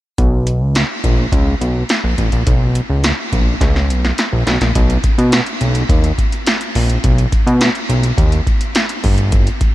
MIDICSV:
0, 0, Header, 1, 3, 480
1, 0, Start_track
1, 0, Key_signature, 5, "major"
1, 0, Tempo, 571429
1, 154, Time_signature, 4, 2, 24, 8
1, 8187, End_track
2, 0, Start_track
2, 0, Title_t, "Analog synth bass"
2, 0, Program_c, 0, 38
2, 154, Note_on_c, 0, 35, 98
2, 511, Note_on_c, 0, 37, 97
2, 524, Note_off_c, 0, 35, 0
2, 703, Note_off_c, 0, 37, 0
2, 873, Note_on_c, 0, 34, 87
2, 1063, Note_off_c, 0, 34, 0
2, 1111, Note_on_c, 0, 37, 111
2, 1302, Note_off_c, 0, 37, 0
2, 1353, Note_on_c, 0, 35, 89
2, 1544, Note_off_c, 0, 35, 0
2, 1713, Note_on_c, 0, 34, 85
2, 1808, Note_off_c, 0, 34, 0
2, 1833, Note_on_c, 0, 33, 91
2, 1928, Note_off_c, 0, 33, 0
2, 1953, Note_on_c, 0, 34, 86
2, 2048, Note_off_c, 0, 34, 0
2, 2073, Note_on_c, 0, 35, 101
2, 2359, Note_off_c, 0, 35, 0
2, 2433, Note_on_c, 0, 37, 94
2, 2623, Note_off_c, 0, 37, 0
2, 2793, Note_on_c, 0, 34, 77
2, 2984, Note_off_c, 0, 34, 0
2, 3031, Note_on_c, 0, 37, 97
2, 3271, Note_on_c, 0, 35, 92
2, 3284, Note_off_c, 0, 37, 0
2, 3462, Note_off_c, 0, 35, 0
2, 3633, Note_on_c, 0, 34, 86
2, 3729, Note_off_c, 0, 34, 0
2, 3751, Note_on_c, 0, 35, 105
2, 3847, Note_off_c, 0, 35, 0
2, 3873, Note_on_c, 0, 34, 85
2, 3968, Note_off_c, 0, 34, 0
2, 3994, Note_on_c, 0, 35, 108
2, 4184, Note_off_c, 0, 35, 0
2, 4353, Note_on_c, 0, 47, 108
2, 4543, Note_off_c, 0, 47, 0
2, 4713, Note_on_c, 0, 35, 86
2, 4904, Note_off_c, 0, 35, 0
2, 4949, Note_on_c, 0, 39, 95
2, 5141, Note_off_c, 0, 39, 0
2, 5673, Note_on_c, 0, 34, 95
2, 5864, Note_off_c, 0, 34, 0
2, 5913, Note_on_c, 0, 35, 100
2, 6104, Note_off_c, 0, 35, 0
2, 6271, Note_on_c, 0, 47, 110
2, 6462, Note_off_c, 0, 47, 0
2, 6631, Note_on_c, 0, 35, 91
2, 6822, Note_off_c, 0, 35, 0
2, 6869, Note_on_c, 0, 39, 99
2, 7061, Note_off_c, 0, 39, 0
2, 7592, Note_on_c, 0, 31, 107
2, 7973, Note_off_c, 0, 31, 0
2, 8187, End_track
3, 0, Start_track
3, 0, Title_t, "Drums"
3, 154, Note_on_c, 9, 36, 115
3, 154, Note_on_c, 9, 42, 99
3, 238, Note_off_c, 9, 36, 0
3, 238, Note_off_c, 9, 42, 0
3, 393, Note_on_c, 9, 42, 72
3, 477, Note_off_c, 9, 42, 0
3, 632, Note_on_c, 9, 42, 86
3, 637, Note_on_c, 9, 38, 114
3, 716, Note_off_c, 9, 42, 0
3, 721, Note_off_c, 9, 38, 0
3, 873, Note_on_c, 9, 36, 99
3, 874, Note_on_c, 9, 42, 70
3, 957, Note_off_c, 9, 36, 0
3, 958, Note_off_c, 9, 42, 0
3, 1111, Note_on_c, 9, 36, 113
3, 1114, Note_on_c, 9, 42, 93
3, 1195, Note_off_c, 9, 36, 0
3, 1198, Note_off_c, 9, 42, 0
3, 1357, Note_on_c, 9, 42, 60
3, 1441, Note_off_c, 9, 42, 0
3, 1589, Note_on_c, 9, 42, 79
3, 1596, Note_on_c, 9, 38, 107
3, 1673, Note_off_c, 9, 42, 0
3, 1680, Note_off_c, 9, 38, 0
3, 1832, Note_on_c, 9, 42, 65
3, 1833, Note_on_c, 9, 36, 85
3, 1916, Note_off_c, 9, 42, 0
3, 1917, Note_off_c, 9, 36, 0
3, 1950, Note_on_c, 9, 42, 52
3, 2034, Note_off_c, 9, 42, 0
3, 2073, Note_on_c, 9, 42, 91
3, 2074, Note_on_c, 9, 36, 119
3, 2157, Note_off_c, 9, 42, 0
3, 2158, Note_off_c, 9, 36, 0
3, 2313, Note_on_c, 9, 42, 73
3, 2397, Note_off_c, 9, 42, 0
3, 2551, Note_on_c, 9, 42, 86
3, 2556, Note_on_c, 9, 38, 110
3, 2635, Note_off_c, 9, 42, 0
3, 2640, Note_off_c, 9, 38, 0
3, 2794, Note_on_c, 9, 36, 88
3, 2794, Note_on_c, 9, 42, 69
3, 2878, Note_off_c, 9, 36, 0
3, 2878, Note_off_c, 9, 42, 0
3, 3032, Note_on_c, 9, 36, 106
3, 3034, Note_on_c, 9, 42, 90
3, 3038, Note_on_c, 9, 38, 52
3, 3116, Note_off_c, 9, 36, 0
3, 3118, Note_off_c, 9, 42, 0
3, 3122, Note_off_c, 9, 38, 0
3, 3160, Note_on_c, 9, 38, 47
3, 3244, Note_off_c, 9, 38, 0
3, 3279, Note_on_c, 9, 42, 62
3, 3363, Note_off_c, 9, 42, 0
3, 3399, Note_on_c, 9, 38, 60
3, 3483, Note_off_c, 9, 38, 0
3, 3512, Note_on_c, 9, 42, 85
3, 3519, Note_on_c, 9, 38, 78
3, 3596, Note_off_c, 9, 42, 0
3, 3603, Note_off_c, 9, 38, 0
3, 3754, Note_on_c, 9, 42, 69
3, 3758, Note_on_c, 9, 38, 91
3, 3838, Note_off_c, 9, 42, 0
3, 3842, Note_off_c, 9, 38, 0
3, 3872, Note_on_c, 9, 42, 51
3, 3879, Note_on_c, 9, 38, 86
3, 3956, Note_off_c, 9, 42, 0
3, 3963, Note_off_c, 9, 38, 0
3, 3993, Note_on_c, 9, 42, 95
3, 3994, Note_on_c, 9, 36, 114
3, 4077, Note_off_c, 9, 42, 0
3, 4078, Note_off_c, 9, 36, 0
3, 4114, Note_on_c, 9, 42, 55
3, 4198, Note_off_c, 9, 42, 0
3, 4231, Note_on_c, 9, 42, 81
3, 4232, Note_on_c, 9, 36, 92
3, 4315, Note_off_c, 9, 42, 0
3, 4316, Note_off_c, 9, 36, 0
3, 4356, Note_on_c, 9, 42, 56
3, 4440, Note_off_c, 9, 42, 0
3, 4471, Note_on_c, 9, 42, 90
3, 4476, Note_on_c, 9, 38, 119
3, 4555, Note_off_c, 9, 42, 0
3, 4560, Note_off_c, 9, 38, 0
3, 4590, Note_on_c, 9, 42, 48
3, 4674, Note_off_c, 9, 42, 0
3, 4711, Note_on_c, 9, 42, 73
3, 4795, Note_off_c, 9, 42, 0
3, 4829, Note_on_c, 9, 42, 61
3, 4913, Note_off_c, 9, 42, 0
3, 4950, Note_on_c, 9, 36, 120
3, 4952, Note_on_c, 9, 42, 91
3, 5034, Note_off_c, 9, 36, 0
3, 5036, Note_off_c, 9, 42, 0
3, 5072, Note_on_c, 9, 42, 49
3, 5156, Note_off_c, 9, 42, 0
3, 5193, Note_on_c, 9, 36, 83
3, 5197, Note_on_c, 9, 42, 66
3, 5277, Note_off_c, 9, 36, 0
3, 5281, Note_off_c, 9, 42, 0
3, 5312, Note_on_c, 9, 42, 51
3, 5396, Note_off_c, 9, 42, 0
3, 5431, Note_on_c, 9, 42, 97
3, 5438, Note_on_c, 9, 38, 113
3, 5515, Note_off_c, 9, 42, 0
3, 5522, Note_off_c, 9, 38, 0
3, 5551, Note_on_c, 9, 42, 66
3, 5635, Note_off_c, 9, 42, 0
3, 5673, Note_on_c, 9, 46, 73
3, 5757, Note_off_c, 9, 46, 0
3, 5792, Note_on_c, 9, 42, 54
3, 5876, Note_off_c, 9, 42, 0
3, 5912, Note_on_c, 9, 42, 98
3, 5913, Note_on_c, 9, 36, 113
3, 5996, Note_off_c, 9, 42, 0
3, 5997, Note_off_c, 9, 36, 0
3, 6035, Note_on_c, 9, 42, 56
3, 6119, Note_off_c, 9, 42, 0
3, 6152, Note_on_c, 9, 36, 90
3, 6153, Note_on_c, 9, 42, 79
3, 6236, Note_off_c, 9, 36, 0
3, 6237, Note_off_c, 9, 42, 0
3, 6278, Note_on_c, 9, 42, 52
3, 6362, Note_off_c, 9, 42, 0
3, 6391, Note_on_c, 9, 42, 92
3, 6396, Note_on_c, 9, 38, 117
3, 6475, Note_off_c, 9, 42, 0
3, 6480, Note_off_c, 9, 38, 0
3, 6512, Note_on_c, 9, 42, 47
3, 6596, Note_off_c, 9, 42, 0
3, 6633, Note_on_c, 9, 42, 74
3, 6717, Note_off_c, 9, 42, 0
3, 6748, Note_on_c, 9, 42, 63
3, 6832, Note_off_c, 9, 42, 0
3, 6869, Note_on_c, 9, 36, 123
3, 6872, Note_on_c, 9, 42, 89
3, 6953, Note_off_c, 9, 36, 0
3, 6956, Note_off_c, 9, 42, 0
3, 6990, Note_on_c, 9, 42, 49
3, 7074, Note_off_c, 9, 42, 0
3, 7112, Note_on_c, 9, 36, 93
3, 7115, Note_on_c, 9, 42, 57
3, 7196, Note_off_c, 9, 36, 0
3, 7199, Note_off_c, 9, 42, 0
3, 7230, Note_on_c, 9, 42, 57
3, 7314, Note_off_c, 9, 42, 0
3, 7349, Note_on_c, 9, 42, 89
3, 7356, Note_on_c, 9, 38, 116
3, 7433, Note_off_c, 9, 42, 0
3, 7440, Note_off_c, 9, 38, 0
3, 7470, Note_on_c, 9, 42, 62
3, 7554, Note_off_c, 9, 42, 0
3, 7591, Note_on_c, 9, 46, 73
3, 7592, Note_on_c, 9, 36, 89
3, 7675, Note_off_c, 9, 46, 0
3, 7676, Note_off_c, 9, 36, 0
3, 7709, Note_on_c, 9, 42, 56
3, 7793, Note_off_c, 9, 42, 0
3, 7831, Note_on_c, 9, 42, 92
3, 7833, Note_on_c, 9, 36, 116
3, 7915, Note_off_c, 9, 42, 0
3, 7917, Note_off_c, 9, 36, 0
3, 7954, Note_on_c, 9, 42, 53
3, 8038, Note_off_c, 9, 42, 0
3, 8071, Note_on_c, 9, 42, 75
3, 8072, Note_on_c, 9, 36, 96
3, 8155, Note_off_c, 9, 42, 0
3, 8156, Note_off_c, 9, 36, 0
3, 8187, End_track
0, 0, End_of_file